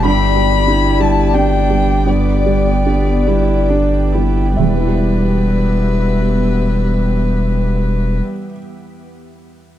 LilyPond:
<<
  \new Staff \with { instrumentName = "Violin" } { \time 3/4 \key e \minor \tempo 4 = 69 b''4. a''8 g''4 | d''2 r4 | b'2.~ | b'2. | }
  \new Staff \with { instrumentName = "Harp" } { \time 3/4 \key e \minor <g' b'>16 d''16 g''16 g'8 d''16 g'16 d''8 g'16 b'16 g''16 | g'16 d''16 g''16 g'8 d''16 g'16 d''8 g'16 b'16 g''16~ | g''2.~ | g''2. | }
  \new Staff \with { instrumentName = "Ambient pad" } { \time 3/4 \key e \minor <b g' d''>2.~ | <b g' d''>2. | <b g' e''>2.~ | <b g' e''>2. | }
  \new Staff \with { instrumentName = "Felt piano" } { \time 3/4 \key e \minor << { b''4. a''8 g''4 | d''2 r4 | <e, e g e' g' e''>2.~ | <e, e g e' g' e''>2. | } \\ { g,8 <g g'>8 <d' g'>8 <g g'>8 <d' g'>8 <g g'>8 | g,8 <g g'>8 <d' g'>8 <g g'>8 <d' g'>8 <g g'>8 | r2. | r2. | } >> }
  \new Staff \with { instrumentName = "Cello" } { \time 3/4 \key e \minor d'4 e'4 d'4 | b4 b8 e'8 d'8 e'8 | g2.~ | g2. | }
  \new Staff \with { instrumentName = "Sub bass" } { \clef bass \time 3/4 \key e \minor g,,2.~ | g,,2. | e,,2.~ | e,,2. | }
>>